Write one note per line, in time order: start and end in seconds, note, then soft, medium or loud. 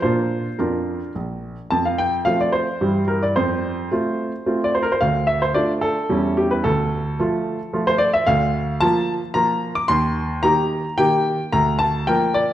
0.02 0.43 A#2 soft
0.02 0.48 A#3 soft
0.02 0.48 D4 soft
0.02 0.56 F4 soft
0.02 0.59 C5 medium
0.59 0.99 F2 soft
0.59 1.12 D4 soft
0.59 1.12 F4 soft
0.59 1.15 A#4 soft
1.15 1.55 A#1 soft
1.71 2.25 F2 soft
1.71 1.85 A5 medium
1.85 1.99 F5 medium
1.98 2.15 G5 medium
2.25 2.66 F3 soft
2.25 2.66 A3 soft
2.25 2.66 C4 soft
2.25 2.40 F5 medium
2.41 2.54 D5 medium
2.52 3.04 C5 medium
2.81 3.34 G2 soft
2.81 3.32 E3 soft
2.81 3.32 G3 soft
2.81 3.33 E4 soft
3.08 3.22 A#4 medium
3.23 3.36 D5 medium
3.36 3.90 F2 soft
3.36 4.60 C5 medium
3.92 4.31 A3 soft
3.92 4.31 C4 soft
3.92 4.31 F4 soft
4.46 4.86 A3 soft
4.46 4.86 C4 soft
4.46 4.86 F4 soft
4.64 4.73 D5 medium
4.75 4.83 C5 medium
4.83 4.92 A#4 medium
4.92 5.01 C5 medium
5.01 5.54 D2 soft
5.01 5.28 F5 medium
5.27 5.41 E5 medium
5.42 5.55 C5 medium
5.54 5.94 A3 soft
5.54 5.95 D4 soft
5.54 5.95 F4 soft
5.54 5.71 D5 medium
5.81 6.36 A4 medium
6.09 6.62 E2 soft
6.09 6.60 G3 soft
6.09 6.60 C#4 soft
6.09 6.61 E4 soft
6.37 6.51 G4 medium
6.51 6.64 B4 medium
6.64 7.17 D2 soft
6.64 7.82 A4 medium
7.20 7.58 F3 soft
7.20 7.58 A3 soft
7.20 7.59 F4 soft
7.73 8.12 F3 soft
7.73 8.12 A3 soft
7.73 8.12 F4 soft
7.87 8.00 C5 medium
7.98 8.12 D5 medium
8.13 8.27 E5 medium
8.27 8.79 D2 medium
8.27 8.77 F5 medium
8.80 9.20 F3 soft
8.80 9.20 A#3 soft
8.80 9.20 F4 soft
8.80 9.13 A5 medium
9.34 9.74 F3 soft
9.34 9.74 A#3 soft
9.34 9.74 F4 soft
9.34 9.71 A#5 medium
9.75 9.89 D6 medium
9.88 10.42 D#2 medium
9.88 10.43 C6 medium
10.43 10.83 D#3 soft
10.43 10.83 A#3 soft
10.43 10.83 G4 medium
10.43 10.98 A#5 medium
10.98 11.37 D#3 soft
10.98 11.38 A#3 soft
10.98 11.38 G4 soft
10.98 11.53 G5 medium
11.53 12.06 D2 medium
11.53 11.78 A#5 medium
11.79 12.07 A5 medium
12.07 12.48 F3 soft
12.07 12.48 A#3 soft
12.07 12.49 A#4 soft
12.07 12.36 G5 medium
12.34 12.52 D5 medium